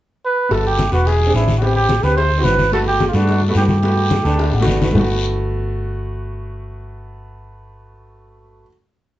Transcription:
0.25 trumpet B4
0.49 fingered electric bass G1, grand piano B3 F#4 A4, trumpet A4, high bongo, high conga, long guiro
0.65 trumpet G4, high bongo, high conga
0.79 high bongo, high conga, short guiro
0.92 fingered electric bass E1, grand piano B3 F#4 B4, trumpet F#4, high conga, short guiro
1.05 trumpet G#4, high bongo, high conga, long guiro
1.20 high bongo, high conga
1.27 grand piano C4 D4 G#4
1.34 fingered electric bass A1, trumpet E4, high bongo, low bongo, high conga, short guiro
1.48 high bongo, high conga, short guiro
1.58 grand piano B3 C4, trumpet F#4, high bongo, high conga, long guiro
1.62 trumpet G4, grand piano G4
1.75 trumpet G4, high bongo, high conga
1.89 high bongo, high conga, short guiro
2.03 fingered electric bass D2, grand piano B3 C4 G4, trumpet B4, high conga, short guiro
2.17 trumpet C5, high bongo, high conga, long guiro
2.31 high bongo, high conga
2.38 grand piano C4 E4 F#4
2.44 fingered electric bass G1, trumpet B4, high bongo, low bongo, high conga, short guiro
2.59 high bongo, high conga, short guiro
2.72 grand piano A3 B3 F#4, trumpet A4, high bongo, high conga, long guiro
2.87 trumpet G4, high bongo, high conga
3.00 high bongo, high conga, short guiro
3.08 trumpet F4
3.13 fingered electric bass G2, grand piano A3 B3 D4, trumpet F#4, high conga, short guiro
3.27 high bongo, high conga, long guiro
3.41 high bongo, high conga
3.48 grand piano A3 B3 F#4
3.55 fingered electric bass G2, trumpet G4, high bongo, low bongo, high conga, short guiro
3.68 trumpet G4, high bongo, high conga, short guiro
3.83 grand piano A3 B3 F#4, high bongo, high conga, long guiro
3.97 high bongo, high conga
4.11 high bongo, high conga, short guiro
4.24 fingered electric bass D2, grand piano A3 B3 D4 A5, high conga, short guiro
4.39 grand piano G5, high bongo, high conga, long guiro
4.53 fingered electric bass A1, grand piano F#5, high bongo, high conga
4.60 grand piano A3 B3 F#4, low bongo
4.67 fingered electric bass G1, grand piano D5, high conga, short guiro
4.72 low bongo
4.82 grand piano B4, low bongo, high conga, short guiro
4.92 fingered electric bass G1, grand piano A3 B3, low bongo, low conga, long guiro
4.99 grand piano F#4

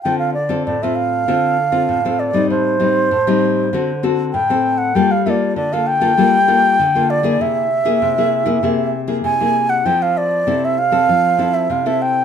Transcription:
0.03 nylon-string guitar D3 C4 F4 A4, flute G5
0.19 flute F5
0.34 flute D5
0.49 nylon-string guitar C4 F4 A4
0.66 nylon-string guitar A2, flute D5
0.82 nylon-string guitar C4 F4 A4, flute E5
0.96 flute F5
1.28 nylon-string guitar D3 C4 F4 A4
1.72 nylon-string guitar C4 F4 A4
1.89 nylon-string guitar A2
2.05 nylon-string guitar C4 F4 A4
2.19 flute D5
2.33 nylon-string guitar G3 C4 D#4
2.50 nylon-string guitar A2, flute C5
2.80 nylon-string guitar G3 C4 D#4
3.11 nylon-string guitar A2
3.27 nylon-string guitar G3 C4 D#4
3.73 nylon-string guitar D3 C4 F#4 A4
4.03 nylon-string guitar C4 F#4 A4
4.33 nylon-string guitar A2, flute G5
4.50 nylon-string guitar C4 A4
4.78 flute F#5
4.95 nylon-string guitar G3 A#3 F4 A4, flute G5
5.11 flute F5
5.26 nylon-string guitar A#3 F4 A4, flute E5
5.30 flute D5
5.56 nylon-string guitar D3, flute D5
5.73 nylon-string guitar A#3 F4 A4, flute F5
5.87 flute G5
6.01 nylon-string guitar A#3 F4 A4
6.17 nylon-string guitar G3 A#3 F4 A4
6.48 nylon-string guitar A#3 F4 A4
6.79 nylon-string guitar D3
6.95 nylon-string guitar A#3 F4 A4
7.10 flute D5
7.23 nylon-string guitar A#3 E4 G#4
7.41 nylon-string guitar C3, flute E5
7.85 nylon-string guitar A#3 E4 G#4
8.02 nylon-string guitar C3
8.18 nylon-string guitar A#3 E4 G#4
8.46 nylon-string guitar A#3 E4 G#4
8.63 nylon-string guitar C3 A#3 E4 G#4
9.07 nylon-string guitar A#3 E4 G#4
9.24 nylon-string guitar C3, flute G#5
9.40 nylon-string guitar A#3 E4 G#4
9.69 flute F#5
9.85 nylon-string guitar F3 C4 E4 A4, flute G5
10.02 flute F5
10.17 flute D5
10.47 nylon-string guitar C3 C4 E4 A4
10.65 flute E5
10.78 flute F5
10.92 nylon-string guitar C4 A4
11.09 nylon-string guitar F3
11.38 nylon-string guitar C4 E4 A4
11.54 flute E5
11.70 nylon-string guitar C3, flute F5
11.86 nylon-string guitar C4 E4 A4, flute E5
12.02 flute G5

